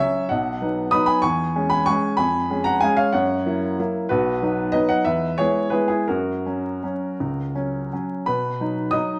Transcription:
0.00 0.27 F#3 soft
0.00 0.28 C#4 medium
0.00 0.28 C#5 medium
0.00 0.30 E5 loud
0.29 0.60 B1 medium
0.29 0.89 D#5 medium
0.29 0.92 F#5 medium
0.61 0.90 F#3 soft
0.61 0.90 B3 medium
0.61 0.90 D#4 soft
0.91 1.21 F#3 soft
0.91 1.21 B3 soft
0.91 1.22 D#4 medium
0.91 1.05 B5 medium
0.91 1.08 D#6 loud
1.06 1.22 G#5 medium
1.06 1.23 B5 loud
1.22 1.55 E2 medium
1.22 1.68 G#5 medium
1.22 1.71 C#6 loud
1.56 1.85 G#3 medium
1.56 1.85 C#4 medium
1.56 1.85 G#4 medium
1.70 1.85 G#5 medium
1.70 1.87 B5 loud
1.86 2.16 G#3 soft
1.86 2.17 C#4 medium
1.86 2.17 G#4 medium
1.86 2.16 G#5 medium
1.86 2.18 C#6 loud
2.17 2.49 F2 medium
2.17 2.62 G#5 medium
2.17 2.65 B5 medium
2.50 2.80 G#3 medium
2.50 2.80 C#4 soft
2.50 2.80 G#4 medium
2.64 2.81 F#5 medium
2.64 2.82 A#5 loud
2.81 3.11 G#3 medium
2.81 3.12 C#4 medium
2.81 3.12 G#4 medium
2.81 2.95 F5 medium
2.81 2.98 G#5 loud
2.97 3.12 C#5 medium
2.97 3.13 F5 loud
3.13 3.45 F#2 medium
3.13 3.58 C#5 medium
3.13 3.61 F#5 medium
3.45 3.75 F#3 soft
3.45 3.75 A#3 soft
3.45 3.76 E4 medium
3.79 4.08 F#3 soft
3.79 4.08 A#3 medium
3.79 4.08 E4 medium
4.09 4.41 B1 medium
4.09 4.70 F#4 medium
4.09 4.71 B4 medium
4.42 4.71 F#3 soft
4.42 4.71 B3 soft
4.42 4.72 D#4 medium
4.72 5.03 F#3 soft
4.72 5.04 B3 medium
4.72 5.04 D#4 medium
4.72 4.89 B4 medium
4.72 4.88 D#5 loud
4.89 5.05 D#5 medium
4.89 5.06 F#5 medium
5.05 5.38 E2 medium
5.05 5.36 B4 medium
5.05 5.38 E5 medium
5.38 5.70 G#3 soft
5.38 5.71 B3 soft
5.38 5.71 E4 medium
5.38 5.70 G#4 medium
5.38 5.73 C#5 loud
5.70 6.05 G#3 medium
5.70 6.05 B3 soft
5.70 5.88 E4 medium
5.70 5.86 G#4 medium
5.70 5.90 B4 medium
5.88 6.07 E4 medium
5.88 6.08 G#4 medium
6.08 6.45 F#2 medium
6.08 7.88 F#4 medium
6.08 7.91 A#4 medium
6.46 6.79 F#3 soft
6.46 6.79 C#4 soft
6.83 7.16 F#3 soft
6.83 7.16 C#4 medium
7.20 7.54 C#2 medium
7.55 7.88 F#3 soft
7.55 7.88 C#4 soft
7.93 8.25 F#3 soft
7.93 8.25 C#4 soft
8.26 8.60 B2 medium
8.26 8.89 B4 medium
8.26 8.92 B5 medium
8.60 8.90 F#3 soft
8.60 8.90 D#4 medium
8.91 9.19 F#3 soft
8.91 9.19 D#4 medium
8.91 9.19 D#5 medium
8.91 9.19 D#6 medium

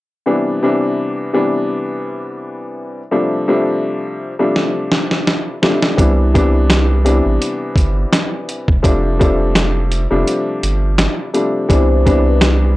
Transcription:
0.26 0.60 C3 medium
0.26 0.60 E3 medium
0.26 0.60 G3 medium
0.26 0.60 B3 medium
0.26 0.60 D4 medium
0.63 1.29 C3 loud
0.63 1.29 E3 medium
0.63 1.29 G3 medium
0.63 1.29 B3 medium
0.63 1.29 D4 loud
1.33 2.99 C3 medium
1.33 3.00 E3 medium
1.33 3.00 G3 medium
1.33 3.00 B3 medium
1.33 3.00 D4 loud
3.11 3.45 C3 medium
3.11 3.45 F3 medium
3.11 3.45 G3 medium
3.11 3.45 A3 medium
3.11 3.46 D4 medium
3.48 4.31 C3 medium
3.48 4.31 F3 medium
3.48 4.32 G3 medium
3.48 4.32 A3 medium
3.48 4.32 D4 loud
4.39 5.53 C3 medium
4.39 5.54 F3 medium
4.39 5.54 G3 medium
4.39 5.54 A3 medium
4.39 5.54 D4 medium
4.56 snare medium
4.92 snare medium
5.11 snare medium
5.27 snare medium
5.62 5.95 C3 medium
5.62 5.96 F3 medium
5.62 5.96 G3 medium
5.62 5.96 A3 medium
5.62 5.96 D4 medium
5.62 snare loud
5.82 snare medium
5.97 7.21 C2 loud
5.97 6.31 C3 medium
5.97 6.31 E3 medium
5.97 6.31 G3 medium
5.97 6.31 B3 medium
5.97 6.31 D4 medium
5.97 kick loud
5.97 closed hi-hat medium
6.34 7.00 C3 loud
6.34 7.00 E3 medium
6.34 7.01 G3 medium
6.34 7.01 B3 medium
6.34 7.01 D4 loud
6.34 kick medium
6.34 closed hi-hat medium
6.70 snare loud
6.70 snare medium
6.70 closed hi-hat medium
7.04 8.71 C3 medium
7.04 8.71 E3 medium
7.04 8.71 G3 medium
7.04 8.71 B3 medium
7.04 8.71 D4 loud
7.04 closed hi-hat medium
7.26 7.38 A1 medium
7.42 closed hi-hat medium
7.76 8.05 G1 medium
7.76 kick medium
7.76 closed hi-hat medium
8.13 snare loud
8.13 snare medium
8.13 closed hi-hat medium
8.49 closed hi-hat medium
8.68 8.81 E1 medium
8.68 kick loud
8.82 10.07 F1 loud
8.82 9.16 C3 medium
8.82 9.17 F3 medium
8.82 9.17 G3 medium
8.82 9.17 A3 medium
8.82 9.17 D4 loud
8.82 kick loud
8.82 closed hi-hat medium
9.19 10.03 C3 medium
9.19 10.03 F3 medium
9.19 10.03 G3 medium
9.19 10.03 A3 medium
9.19 10.03 D4 loud
9.19 kick medium
9.19 closed hi-hat medium
9.55 snare loud
9.55 snare medium
9.55 closed hi-hat medium
9.92 closed hi-hat medium
10.10 10.24 F1 medium
10.10 11.25 C3 medium
10.10 11.25 F3 medium
10.10 11.25 G3 medium
10.10 11.25 A3 medium
10.10 11.25 D4 medium
10.27 closed hi-hat medium
10.63 11.08 G1 loud
10.63 closed hi-hat medium
10.98 snare loud
10.98 snare medium
10.98 closed hi-hat medium
11.33 11.67 C3 medium
11.33 11.67 F3 medium
11.33 11.67 G3 medium
11.33 11.67 A3 medium
11.33 11.67 D4 medium
11.33 closed hi-hat medium
11.68 12.77 C2 loud
11.68 12.03 B2 medium
11.68 12.02 C3 medium
11.68 12.02 E3 medium
11.68 12.03 G3 medium
11.68 12.03 D4 medium
11.68 12.22 C5 loud
11.68 kick loud
11.68 closed hi-hat medium
12.05 12.72 C3 loud
12.05 12.72 E3 medium
12.05 12.72 G3 medium
12.05 12.72 B3 medium
12.05 12.72 D4 loud
12.05 kick medium
12.05 closed hi-hat medium
12.25 12.40 B4 medium
12.41 snare loud
12.41 snare medium
12.41 closed hi-hat medium

